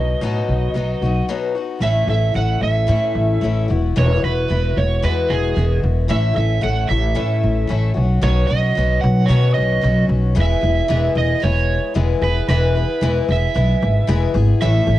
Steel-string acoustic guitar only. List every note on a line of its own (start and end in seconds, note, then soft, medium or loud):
0.00 0.20 B2 medium
0.00 0.21 F#3 medium
0.00 0.22 B3 medium
0.00 0.22 D#4 medium
0.00 0.23 F#4 medium
0.21 0.75 B2 medium
0.21 0.73 F#3 medium
0.21 0.74 B3 medium
0.21 0.75 D#4 medium
0.21 0.76 F#4 medium
0.74 1.01 F#3 medium
0.74 1.02 B3 medium
0.74 1.02 D#4 medium
0.74 1.01 F#4 medium
1.02 1.29 B3 soft
1.02 1.29 D#4 soft
1.02 1.29 F#4 medium
1.29 1.55 B2 medium
1.29 1.56 F#3 medium
1.29 1.56 B3 medium
1.29 1.55 D#4 medium
1.29 1.54 F#4 medium
1.55 1.82 B3 soft
1.55 1.82 D#4 soft
1.55 1.82 F#4 soft
1.81 2.08 A2 medium
1.81 2.09 E3 medium
1.81 2.09 A3 medium
1.81 2.09 C#4 medium
1.81 2.08 E4 medium
1.81 2.08 A4 medium
2.09 2.33 A3 soft
2.09 2.34 C#4 soft
2.09 2.35 E4 soft
2.09 2.36 A4 soft
2.34 2.87 A3 medium
2.34 2.87 C#4 medium
2.34 2.89 E4 medium
2.34 2.88 A4 medium
2.87 3.41 A2 medium
2.87 3.71 E3 medium
2.87 3.40 A3 medium
2.87 3.42 C#4 medium
2.87 3.44 E4 medium
2.87 3.43 A4 medium
3.41 3.69 A3 medium
3.41 3.70 C#4 medium
3.41 3.69 E4 medium
3.41 3.68 A4 medium
3.68 3.95 B3 soft
3.68 3.96 E4 soft
3.68 3.95 F#4 soft
3.96 4.23 E3 medium
3.96 4.23 G#3 medium
3.96 4.23 B3 medium
3.96 4.23 E4 medium
3.96 4.20 F#4 medium
4.22 4.48 B3 soft
4.22 4.49 E4 soft
4.22 4.49 F#4 soft
4.48 5.02 G#3 medium
4.48 5.02 B3 medium
4.48 5.03 E4 medium
4.48 5.04 F#4 medium
5.02 5.56 E3 medium
5.02 5.54 G#3 medium
5.02 5.56 B3 medium
5.02 5.57 E4 medium
5.02 5.57 F#4 medium
5.56 6.09 G#3 medium
5.56 6.09 B3 medium
5.56 6.08 E4 medium
5.56 6.10 F#4 medium
6.08 6.35 A2 medium
6.08 6.36 E3 medium
6.08 6.36 A3 medium
6.08 6.35 C#4 medium
6.08 6.34 E4 medium
6.08 6.33 A4 medium
6.34 6.60 A3 soft
6.34 6.61 C#4 soft
6.34 6.62 E4 soft
6.34 6.62 A4 soft
6.61 6.89 A3 medium
6.61 6.89 C#4 medium
6.61 6.89 E4 medium
6.61 6.87 A4 medium
6.89 7.14 A3 soft
6.89 7.14 C#4 soft
6.89 7.15 E4 soft
6.89 7.15 A4 soft
7.15 7.69 A2 medium
7.15 7.69 E3 medium
7.15 7.66 A3 medium
7.15 7.68 C#4 medium
7.15 7.69 E4 medium
7.15 7.70 A4 medium
7.67 7.95 A3 medium
7.67 7.94 C#4 medium
7.67 7.95 E4 medium
7.67 7.94 A4 medium
7.94 8.21 F#3 soft
7.94 8.22 B3 soft
7.94 8.21 C#4 soft
7.94 8.22 F#4 medium
8.21 8.49 B2 medium
8.21 8.49 D#3 medium
8.21 8.49 F#3 medium
8.21 8.49 B3 medium
8.21 8.48 C#4 medium
8.21 8.47 F#4 medium
8.48 8.74 F#3 soft
8.48 8.76 B3 soft
8.48 8.76 C#4 soft
8.48 8.76 F#4 medium
8.75 9.28 F#3 medium
8.75 9.29 B3 medium
8.75 9.29 C#4 medium
8.75 9.30 F#4 medium
9.28 9.82 B2 medium
9.28 9.82 D#3 medium
9.28 9.80 F#3 medium
9.28 9.81 B3 medium
9.28 9.83 C#4 medium
9.28 9.83 F#4 medium
9.81 10.35 F#3 medium
9.81 10.35 B3 medium
9.81 10.36 C#4 medium
9.81 10.37 F#4 medium
10.35 10.62 E3 medium
10.35 10.62 G#3 medium
10.35 10.63 B3 medium
10.35 10.62 E4 medium
10.35 10.60 G#4 medium
10.61 10.89 B3 soft
10.61 10.89 E4 soft
10.61 10.89 G#4 soft
10.88 11.15 E3 medium
10.88 11.16 G#3 medium
10.88 11.16 B3 medium
10.88 11.15 E4 medium
10.88 11.14 G#4 medium
11.15 11.41 B3 soft
11.15 11.41 E4 soft
11.15 11.42 G#4 medium
11.40 11.94 G#3 medium
11.40 11.94 B3 medium
11.40 11.95 E4 medium
11.40 11.95 G#4 medium
11.94 12.22 E3 medium
11.94 12.22 G#3 medium
11.94 12.22 B3 medium
11.94 12.22 E4 medium
11.94 12.20 G#4 medium
12.21 12.49 B3 soft
12.21 12.49 E4 medium
12.21 12.48 G#4 medium
12.48 12.75 E3 medium
12.48 12.76 G#3 medium
12.48 12.76 B3 medium
12.48 12.76 E4 medium
12.48 12.74 G#4 medium
12.75 13.01 B3 soft
12.75 13.02 E4 medium
12.75 13.02 G#4 soft
13.01 13.28 E3 medium
13.01 13.29 G#3 medium
13.01 13.29 B3 medium
13.01 13.29 E4 medium
13.01 13.27 G#4 loud
13.28 13.54 B3 soft
13.28 13.55 E4 soft
13.28 13.55 G#4 soft
13.54 14.07 G#3 medium
13.54 14.08 B3 medium
13.54 14.08 E4 medium
13.54 14.08 G#4 medium
14.07 14.34 E3 medium
14.07 14.35 G#3 medium
14.07 14.35 B3 medium
14.07 14.34 E4 medium
14.07 14.33 G#4 loud
14.34 14.62 B3 medium
14.34 14.61 E4 medium
14.34 14.61 G#4 medium
14.61 14.88 A2 medium
14.61 14.88 E3 medium
14.61 14.88 A3 medium
14.61 14.88 C#4 medium
14.61 14.86 E4 medium
14.61 14.85 A4 medium
14.87 14.99 A3 soft
14.87 14.99 C#4 medium
14.87 14.99 E4 soft
14.87 14.99 A4 medium